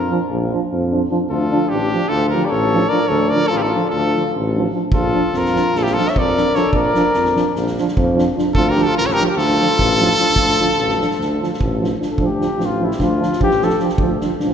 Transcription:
Already playing: tuba F2, flugelhorn F4, trumpet A#4
0.11 euphonium F3 D4
0.30 tuba A#1
0.52 euphonium F3 D4
0.73 tuba F2
0.91 euphonium F3 D4
1.10 euphonium F3 D4
1.28 tuba D2, flugelhorn F4, trumpet A4
1.51 euphonium F3 D4
1.67 tuba A1, flugelhorn D4, trumpet G4
1.93 euphonium F3 D4
2.09 tuba D2, flugelhorn F4, trumpet A4
2.29 flugelhorn G4, trumpet A#4
2.34 euphonium F3 D4
2.46 flugelhorn A4 A#4, trumpet D5
2.50 tuba A1, trumpet C#5
2.73 euphonium F3 D4
2.89 euphonium F3 D4, flugelhorn A#4, trumpet D5
3.08 tuba D2, flugelhorn A4, trumpet C#5
3.29 euphonium D4, flugelhorn A#4, trumpet D5
3.33 euphonium F3
3.47 flugelhorn F4, trumpet A4
3.51 tuba A1
3.58 trumpet G4
3.62 flugelhorn E4, trumpet A4
3.67 flugelhorn F4
3.74 euphonium F3 D4
3.90 tuba D2, flugelhorn F4, trumpet A4
4.15 euphonium F3 D4
4.36 tuba A1
4.55 euphonium F3 D4
4.73 euphonium F3 D4
4.92 tuba A#1, flugelhorn F4, trumpet A4, kick
5.13 euphonium F3 D4
5.33 tuba F2, flugelhorn F4, snare
5.37 trumpet A#4
5.45 snare
5.54 euphonium F3 D4, snare
5.75 tuba A#1, flugelhorn F4, trumpet A4, snare
5.83 flugelhorn E4, trumpet G4, snare
5.91 flugelhorn F4, trumpet A4
5.96 euphonium F3 D4, snare
6.07 flugelhorn C#5, trumpet E5, snare
6.16 tuba F2, flugelhorn A#4, trumpet D5, kick
6.36 euphonium F3 D4, snare
6.54 euphonium F3 D4, flugelhorn A4, trumpet C#5, snare
6.72 tuba A#1, flugelhorn A#4, trumpet D5, kick
6.95 euphonium F3 D4, snare
7.14 tuba F2, snare
7.25 snare
7.35 euphonium F3 D4, snare
7.56 tuba A#1, snare
7.67 snare
7.78 euphonium F3 D4, snare
7.88 snare
7.97 tuba F2, kick
8.15 euphonium F3 D4, snare
8.36 euphonium F3 D4, snare
8.54 tuba D2, flugelhorn F4, trumpet A4, kick
8.69 flugelhorn G4, trumpet A#4
8.75 euphonium F3 D4, snare
8.83 trumpet A4
8.88 flugelhorn F4
8.97 tuba A1, flugelhorn F4, trumpet A#4, snare
9.06 flugelhorn A4, trumpet C#5, snare
9.13 flugelhorn G4, trumpet A#4
9.18 euphonium F3 D4, snare
9.26 flugelhorn G4, trumpet A#4
9.36 tuba D2, flugelhorn F4, trumpet A4, snare
9.50 snare
9.61 euphonium F3 D4, snare
9.69 snare
9.79 tuba A1, kick
10.00 euphonium F3 D4, snare
10.18 euphonium F3 D4, snare
10.36 tuba D2, kick
10.58 euphonium F3 D4, snare
10.77 tuba A1, snare
10.89 snare
10.98 euphonium F3 D4, snare
11.11 snare
11.19 tuba D2, snare
11.41 euphonium F3 D4, snare
11.53 snare
11.60 tuba A1, kick
11.80 euphonium F3 D4
11.84 snare
12.00 euphonium F3 D4, snare
12.11 flugelhorn A4
12.18 tuba D2, euphonium F3 D4, kick
12.25 flugelhorn G4
12.39 euphonium F3 D4, snare
12.56 tuba A1, euphonium F3 D4, snare
12.66 flugelhorn F4
12.79 euphonium F3 D4
12.84 flugelhorn E4
12.91 snare
12.98 tuba D2, euphonium F3 D4, kick, snare
13.04 flugelhorn F4
13.20 euphonium F3 D4, snare
13.32 snare
13.40 tuba A1, euphonium F3 D4, flugelhorn G4, kick
13.51 snare
13.62 euphonium F3 D4, flugelhorn A4, snare
13.69 snare
13.79 euphonium F3 D4, snare
13.89 snare
13.98 tuba D2, euphonium F3 D4, kick
14.21 euphonium F3 D4, snare
14.40 tuba A1, euphonium D4, snare
14.44 euphonium F3

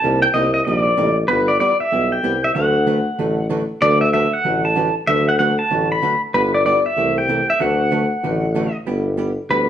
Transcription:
Already playing: pedal steel guitar A5
0.02 tuba C2, hollow-body jazz guitar C3 G3 A#3 D#4 G4
0.22 pedal steel guitar G5
0.34 tuba C2, hollow-body jazz guitar C3 G3 A#3 D#4 G4, pedal steel guitar D#5
0.54 pedal steel guitar D#5
0.65 tuba A#1, hollow-body jazz guitar C3 G3 A#3 D#4 G4, pedal steel guitar D#5
0.76 pedal steel guitar D5
0.97 tuba A1, hollow-body jazz guitar C3 G3 A#3 D#4 G4
1.28 tuba G1, hollow-body jazz guitar G3 B3 E4 G4, pedal steel guitar B4
1.48 pedal steel guitar D5
1.60 hollow-body jazz guitar G3 B3 E4 G4, pedal steel guitar D5
1.80 pedal steel guitar E5
1.92 tuba B1, hollow-body jazz guitar G3 B3 E4 G4
2.12 pedal steel guitar G5
2.23 tuba C2, hollow-body jazz guitar G3 B3 E4 G4
2.44 pedal steel guitar E5
2.54 tuba D2, hollow-body jazz guitar D3 F#3 A3 D4 F#4 B4, pedal steel guitar F#5
2.86 hollow-body jazz guitar D3 F#3 A3 D4 F#4 B4
3.18 tuba A1, hollow-body jazz guitar D3 F#3 A3 D4 F#4 B4
3.49 hollow-body jazz guitar D3 F#3 A3 D4 F#4 B4
3.81 tuba D2, hollow-body jazz guitar D3 F#3 A3 D4 F#4 B4, pedal steel guitar D5
4.01 pedal steel guitar E5
4.13 hollow-body jazz guitar D3 F#3 A3 D4 F#4 B4, pedal steel guitar E5
4.33 pedal steel guitar F#5
4.44 tuba A1, hollow-body jazz guitar D3 F#3 A3 D4 F#4 B4
4.65 pedal steel guitar A5
4.75 hollow-body jazz guitar D3 F#3 A3 D4 F#4 B4
5.07 tuba D2, hollow-body jazz guitar D3 F#3 A3 D4 F#4 B4, pedal steel guitar E5
5.29 pedal steel guitar F#5
5.39 hollow-body jazz guitar D3 F#3 A3 D4 F#4 B4, pedal steel guitar F#5
5.59 pedal steel guitar A5
5.70 tuba A1, hollow-body jazz guitar D3 F#3 A3 D4 F#4 B4
5.92 pedal steel guitar B5
6.02 hollow-body jazz guitar D3 F#3 A3 D4 F#4 B4
6.34 tuba G1, hollow-body jazz guitar G3 B3 E4 G4, pedal steel guitar B4
6.54 pedal steel guitar D5
6.66 hollow-body jazz guitar G3 B3 E4 G4, pedal steel guitar D5
6.86 pedal steel guitar E5
6.97 tuba C2, hollow-body jazz guitar C3 E3 A3 E4 G4
7.18 pedal steel guitar G5
7.29 hollow-body jazz guitar C3 E3 A3 E4 G4
7.50 pedal steel guitar E5
7.60 tuba D2, hollow-body jazz guitar D3 F#3 A3 D4 F#4 B4, pedal steel guitar F#5
7.91 hollow-body jazz guitar D3 F#3 A3 D4 F#4 B4
8.23 tuba A1, hollow-body jazz guitar D3 F#3 A3 D4 F#4 B4
8.55 hollow-body jazz guitar D3 F#3 A3 D4 F#4 B4
8.86 tuba G1, hollow-body jazz guitar G3 B3 E4 G4
9.17 hollow-body jazz guitar G3 B3 E4 G4
9.49 tuba D2, hollow-body jazz guitar G3 B3 E4 G4, pedal steel guitar B4

